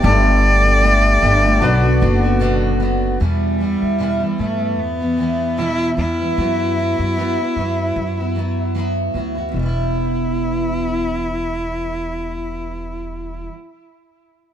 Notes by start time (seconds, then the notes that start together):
Already playing: G4
0.02 G1 D3 G3 A3 D4 G4 A4
0.06 D5
0.24 A3 D4 G4
0.63 A3 D4 G4
0.81 G3 A3 D4 G4
1.21 G1 G3 A3 D4 G4
1.42 A3 D4 G4
1.60 B1 B2 F#3 B3 D4 F#4 B4
1.82 B3 D4 F#4
2.00 F#1 F#3 B3 D4 F#4
2.23 B3 D4 F#4
2.40 B2 F#3 B3 D4 F#4
2.80 F#3 B3 D4 F#4
3.20 E2 B2 E3 G3 B3 E4
3.59 E3 G3 B3 E4
3.82 E2
3.99 E2 B2 E3 G3 B3 E4
4.20 E3 G3 B3 E4
4.38 G2 E3 G3 A3 B3 E4
4.79 E2 B3
5.00 E3 G3 B3 E4
5.17 E3 G3 B3 E4
5.57 E2 B2 E3 G3 B3 E4
5.97 E2 E3 G3 B3 E4
6.19 E3 G3 B3 E4
6.37 F#2 F#3 B3 E4 F#4
6.76 F#3 B3 E4 F#4
6.99 F#2
7.16 F#3 B3 E4 F#4
7.38 B3 E4 F#4
7.56 F#2 F#3 B3 E4 F#4
7.96 F#2
8.17 B3 E4 F#4
8.35 F#3 B3 E4 F#4
8.75 F#3 B3 E4 F#4
9.14 D2 F#3 B3 E4 F#4
9.35 B3 E4 F#4
9.49 E2 B2
9.54 E1 E3 E4
9.59 G3 B3
9.66 E4